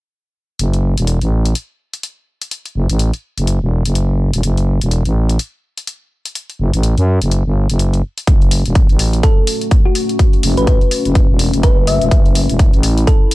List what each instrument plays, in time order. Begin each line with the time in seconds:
0.59 fm bass F#1, closed hi-hat
0.74 closed hi-hat
0.97 fm bass E1, closed hi-hat
1.07 closed hi-hat
1.21 fm bass A1, closed hi-hat
1.45 closed hi-hat
1.55 closed hi-hat
1.93 closed hi-hat
2.03 closed hi-hat
2.41 closed hi-hat
2.51 closed hi-hat
2.66 closed hi-hat
2.75 fm bass F#1
2.89 fm bass A1, closed hi-hat
2.99 closed hi-hat
3.14 closed hi-hat
3.38 fm bass F#1, closed hi-hat
3.47 closed hi-hat
3.61 fm bass E1
3.85 fm bass F#1, closed hi-hat
3.95 closed hi-hat
4.33 fm bass E1, closed hi-hat
4.43 fm bass F#1, closed hi-hat
4.57 closed hi-hat
4.81 fm bass E1, closed hi-hat
4.91 closed hi-hat
5.05 fm bass A1, closed hi-hat
5.29 closed hi-hat
5.39 closed hi-hat
5.77 closed hi-hat
5.87 closed hi-hat
6.25 closed hi-hat
6.35 closed hi-hat
6.50 closed hi-hat
6.59 fm bass F#1
6.73 fm bass A1, closed hi-hat
6.83 closed hi-hat
6.97 fm bass F#2, closed hi-hat
7.22 fm bass F#1, closed hi-hat
7.31 closed hi-hat
7.45 fm bass G1
7.69 fm bass F#1, closed hi-hat
7.79 closed hi-hat
7.94 closed hi-hat
8.18 closed hi-hat
8.27 fm bass F#1, analog synth pad A3 C#4 F#4, kick, closed hi-hat
8.41 closed hi-hat
8.51 open hi-hat
8.65 fm bass E1, closed hi-hat
8.75 kick, closed hi-hat
8.89 fm bass A1, closed hi-hat
8.99 open hi-hat
9.13 closed hi-hat
9.23 synth pluck A4, kick, closed hi-hat
9.47 open hi-hat
9.61 closed hi-hat
9.71 kick, closed hi-hat
9.85 synth pluck F#4
9.95 open hi-hat
10.09 closed hi-hat
10.19 kick, closed hi-hat
10.33 closed hi-hat
10.43 fm bass F#1, open hi-hat
10.57 fm bass A1, synth pluck B4, closed hi-hat
10.67 synth pluck B4, kick, closed hi-hat
10.81 closed hi-hat
10.91 open hi-hat
11.05 fm bass F#1, closed hi-hat
11.15 kick, closed hi-hat
11.29 fm bass E1
11.39 open hi-hat
11.53 fm bass F#1, closed hi-hat
11.63 synth pluck B4, kick, closed hi-hat
11.87 synth pluck E5, open hi-hat
12.01 fm bass E1, closed hi-hat
12.11 fm bass F#1, analog synth pad E4, kick, closed hi-hat
12.25 closed hi-hat
12.35 open hi-hat
12.49 fm bass E1, closed hi-hat
12.59 kick, closed hi-hat
12.73 fm bass A1, closed hi-hat
12.83 open hi-hat
12.97 closed hi-hat
13.07 synth pluck A4, kick, closed hi-hat
13.31 open hi-hat